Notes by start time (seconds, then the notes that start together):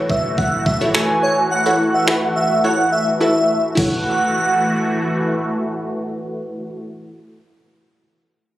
Already playing: E3 A3 E4 F#4 A4 C#5
0.09 E5, kick
0.38 F#5, kick
0.66 E5, kick
0.81 E4 F#4 A4 C#5
0.94 E4 F#4 A4 C#5 G#5, finger snap
1.23 C#5
1.51 F#5
1.66 E4 F#4 A4 C#5
1.94 E5
2.07 E4 F#4 A4 B4, finger snap
2.36 E5
2.64 E4 F#4 A4 C#5 F#5
2.92 E5
3.21 E4 F#4 A4 B4 E5
3.75 E3 A3 E4 F#4 A4 F#5, kick, crash
3.79 C#5